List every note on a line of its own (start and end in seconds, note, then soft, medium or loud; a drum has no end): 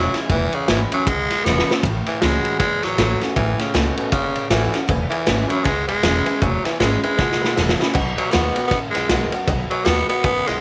0.00 0.25 B2 medium
0.00 0.27 E3 loud
0.00 0.15 F#3 loud
0.00 0.28 G#3 medium
0.00 0.28 C#4 loud
0.00 0.28 E4 loud
0.14 snare soft
0.14 ride medium
0.29 0.47 E1 loud
0.29 1.03 E2 medium
0.29 0.56 E3 loud
0.29 kick loud
0.29 ride medium
0.53 0.69 C#3 loud
0.53 ride medium
0.68 0.86 G#1 loud
0.68 0.90 E3 medium
0.68 0.80 E3 medium
0.68 0.90 G#3 medium
0.68 0.91 C#4 medium
0.68 0.91 E4 medium
0.68 snare loud
0.68 ride medium
0.92 1.09 F#3 loud
0.92 1.07 C#4 medium
0.92 1.06 E4 medium
0.92 muted upright bass stroke medium
0.92 ride medium
1.07 1.25 C#2 loud
1.07 1.81 B2 medium
1.07 1.47 G#3 loud
1.07 kick loud
1.07 ride medium
1.31 1.42 E1 medium
1.31 snare soft
1.31 ride medium
1.45 1.63 E1 medium
1.45 1.67 E3 loud
1.45 1.68 G#3 loud
1.45 1.76 B3 loud
1.45 1.68 C#4 medium
1.45 1.68 E4 loud
1.45 snare medium
1.59 snare medium
1.69 1.84 C#4 soft
1.69 1.83 E4 medium
1.69 muted upright bass stroke medium
1.69 snare loud
1.83 2.01 A1 loud
1.83 2.58 A2 medium
1.83 kick loud
1.83 ride medium
2.06 2.23 E3 medium
2.06 ride medium
2.21 2.40 C#2 loud
2.21 2.58 E3 medium
2.21 2.58 G#3 loud
2.21 2.59 C#4 medium
2.21 2.59 F#4 loud
2.21 snare loud
2.21 ride medium
2.45 muted upright bass stroke medium
2.45 ride medium
2.59 2.77 F#1 loud
2.59 3.33 E2 medium
2.59 2.85 G#3 loud
2.59 kick loud
2.59 snare soft
2.59 ride medium
2.83 2.95 A1 medium
2.83 3.21 F#3 loud
2.83 snare soft
2.83 ride medium
2.98 3.16 A1 loud
2.98 3.20 E3 loud
2.98 3.20 A3 medium
2.98 3.21 C#4 loud
2.98 3.19 F#4 loud
2.98 snare loud
2.98 ride medium
3.21 3.36 C#4 soft
3.21 3.35 F#4 medium
3.21 muted upright bass stroke medium
3.21 snare soft
3.21 ride medium
3.36 3.54 A1 loud
3.36 4.10 A2 medium
3.36 3.61 E3 loud
3.36 kick loud
3.36 ride medium
3.59 3.77 C#3 medium
3.59 muted upright bass stroke medium
3.59 snare soft
3.59 ride medium
3.74 3.92 C#2 medium
3.74 3.97 B2 medium
3.74 4.11 E3 medium
3.74 4.11 A3 medium
3.74 4.11 C#4 medium
3.74 4.12 F#4 medium
3.74 snare loud
3.74 ride medium
3.97 4.12 B2 medium
3.97 muted upright bass stroke medium
3.97 ride medium
4.12 4.30 F#1 loud
4.12 4.86 E2 loud
4.12 4.48 C#3 loud
4.12 kick loud
4.12 ride medium
4.35 4.47 A1 medium
4.35 ride medium
4.50 4.68 A1 medium
4.50 4.79 E3 loud
4.50 4.73 E3 loud
4.50 4.73 A3 loud
4.50 4.73 C#4 loud
4.50 4.72 F#4 loud
4.50 snare loud
4.50 ride medium
4.73 4.89 C#4 soft
4.73 4.88 F#4 medium
4.73 muted upright bass stroke medium
4.73 snare soft
4.73 ride medium
4.88 5.07 E1 loud
4.88 5.62 E2 medium
4.88 5.03 B4 loud
4.88 5.03 E5 loud
4.88 5.04 G#5 loud
4.88 kick loud
4.88 ride medium
5.10 5.51 E3 loud
5.10 5.21 B4 medium
5.10 5.21 E5 medium
5.10 5.22 G#5 medium
5.10 ride medium
5.26 5.45 G#1 loud
5.26 5.49 E3 medium
5.26 5.49 G#3 medium
5.26 5.49 C#4 medium
5.26 5.48 E4 loud
5.26 5.41 B4 medium
5.26 5.42 E5 medium
5.26 5.42 G#5 medium
5.26 snare loud
5.26 ride medium
5.49 5.66 F#3 loud
5.49 5.65 C#4 medium
5.49 5.64 E4 medium
5.49 5.59 B4 medium
5.49 5.59 E5 medium
5.49 5.60 B5 medium
5.49 ride medium
5.64 5.83 C#2 loud
5.64 6.38 B2 medium
5.64 5.88 G#3 loud
5.64 5.78 B4 medium
5.64 5.79 E5 medium
5.64 5.79 G#5 loud
5.64 kick loud
5.64 snare soft
5.64 ride loud
5.87 6.00 E1 medium
5.87 6.43 G#3 loud
5.87 5.97 B4 medium
5.87 5.97 E5 medium
5.87 5.98 G#5 medium
5.87 ride medium
6.03 6.21 E1 loud
6.03 6.26 E3 medium
6.03 6.26 G#3 loud
6.03 6.26 C#4 loud
6.03 6.26 E4 loud
6.03 6.17 B4 medium
6.03 6.17 E5 medium
6.03 6.18 G#5 medium
6.03 snare loud
6.03 ride medium
6.25 6.42 E4 medium
6.25 6.35 B4 medium
6.25 6.36 E5 medium
6.25 6.36 G#5 medium
6.25 ride medium
6.29 6.43 C#4 soft
6.42 6.60 E1 loud
6.42 7.16 E2 medium
6.42 6.66 F#3 medium
6.42 6.56 B4 loud
6.42 6.56 E5 medium
6.42 6.56 G#5 loud
6.42 kick loud
6.42 ride medium
6.65 6.79 E3 medium
6.65 6.74 B4 medium
6.65 6.75 E5 medium
6.65 6.75 G#5 medium
6.65 muted upright bass stroke medium
6.65 snare soft
6.65 ride medium
6.79 6.98 G#1 loud
6.79 7.03 E3 medium
6.79 7.01 G#3 medium
6.79 7.04 G#3 medium
6.79 7.04 C#4 medium
6.79 6.94 B4 medium
6.79 6.94 E5 medium
6.79 6.95 G#5 medium
6.79 snare loud
6.79 ride medium
6.84 7.03 E4 loud
7.03 7.76 G#3 medium
7.03 7.19 C#4 soft
7.03 7.18 E4 medium
7.03 7.12 B4 medium
7.03 7.13 E5 medium
7.03 7.13 G#5 medium
7.03 ride medium
7.17 7.36 C#2 loud
7.17 7.92 B2 medium
7.17 7.31 B4 loud
7.17 7.32 E5 medium
7.17 7.32 G#5 loud
7.17 kick loud
7.17 snare medium
7.32 snare medium
7.40 7.54 E1 medium
7.40 7.50 B4 medium
7.40 7.50 E5 medium
7.40 7.51 B5 medium
7.40 snare medium
7.56 7.75 E1 loud
7.56 7.79 E3 medium
7.56 7.79 G#3 medium
7.56 7.79 C#4 medium
7.56 7.77 E4 loud
7.56 7.70 B4 medium
7.56 7.70 E5 medium
7.56 7.71 G#5 medium
7.56 snare medium
7.69 snare loud
7.78 7.95 C#4 soft
7.78 7.93 E4 medium
7.78 7.88 B4 medium
7.78 7.89 E5 medium
7.78 7.89 B5 medium
7.78 muted upright bass stroke medium
7.82 snare medium
7.93 8.13 B1 loud
7.93 8.68 B2 medium
7.93 8.08 B4 loud
7.93 8.08 D#5 loud
7.93 8.09 F#5 loud
7.93 kick loud
7.93 crash medium
7.93 ride medium
8.17 8.32 F#3 medium
8.17 8.27 B4 medium
8.17 8.27 D#5 medium
8.17 8.27 G#5 medium
8.17 muted upright bass stroke medium
8.17 ride medium
8.31 8.52 D#2 loud
8.31 8.54 D#3 medium
8.31 8.55 G#3 loud
8.31 8.67 B3 loud
8.31 8.55 B3 medium
8.31 8.54 F#4 loud
8.31 8.46 B4 medium
8.31 8.47 D#5 medium
8.31 8.47 F#5 medium
8.31 snare loud
8.31 ride medium
8.55 8.71 B3 medium
8.55 8.70 F#4 medium
8.55 8.65 B4 medium
8.55 8.66 D#5 medium
8.55 8.66 F#5 medium
8.55 muted upright bass stroke medium
8.55 ride medium
8.68 8.79 B3 loud
8.68 8.85 B4 loud
8.68 8.85 D#5 medium
8.68 kick loud
8.68 snare soft
8.68 ride medium
8.72 8.89 A1 loud
8.72 9.45 F#2 medium
8.72 8.86 F#5 loud
8.91 9.28 G#3 medium
8.91 9.03 B4 medium
8.95 9.06 B1 medium
8.95 9.04 D#5 medium
8.95 9.04 F#5 medium
8.95 snare soft
8.95 ride medium
9.09 9.27 B1 medium
9.09 9.32 D#3 medium
9.09 9.32 G#3 medium
9.09 9.32 B3 medium
9.09 9.33 F#4 loud
9.09 9.24 B4 medium
9.09 9.24 D#5 medium
9.09 9.24 F#5 medium
9.09 snare loud
9.09 ride medium
9.32 9.49 B3 soft
9.32 9.48 F#4 medium
9.32 9.42 B4 medium
9.32 9.42 D#5 medium
9.32 9.43 F#5 medium
9.32 muted upright bass stroke medium
9.32 ride medium
9.47 9.65 B1 loud
9.47 10.22 B2 medium
9.47 9.62 B4 loud
9.47 9.62 D#5 loud
9.47 9.63 F#5 loud
9.47 kick loud
9.47 ride medium
9.70 9.86 F#3 loud
9.70 9.80 B4 medium
9.70 9.80 D#5 medium
9.70 9.81 G#5 medium
9.70 muted upright bass stroke medium
9.70 ride medium
9.85 10.04 D#2 medium
9.85 10.08 D#3 medium
9.85 10.08 G#3 medium
9.85 10.08 B3 loud
9.85 10.09 B3 medium
9.85 10.08 F#4 loud
9.85 9.99 B4 medium
9.85 10.00 D#5 medium
9.85 10.00 F#5 medium
9.85 snare loud
9.85 ride medium
10.08 10.23 B3 loud
10.08 10.25 B3 medium
10.08 10.24 F#4 medium
10.08 10.18 B4 medium
10.08 10.19 D#5 medium
10.08 10.19 F#5 medium
10.08 ride medium
10.23 10.42 A1 loud
10.23 10.61 F#2 medium
10.23 10.49 B3 loud
10.23 10.38 B4 loud
10.23 10.38 D#5 medium
10.23 10.39 G#5 loud
10.23 kick loud
10.23 ride medium
10.47 10.59 B1 medium
10.47 10.61 G#3 loud
10.47 10.57 B4 medium
10.47 10.57 D#5 medium
10.47 10.57 F#5 medium
10.47 snare soft
10.47 ride medium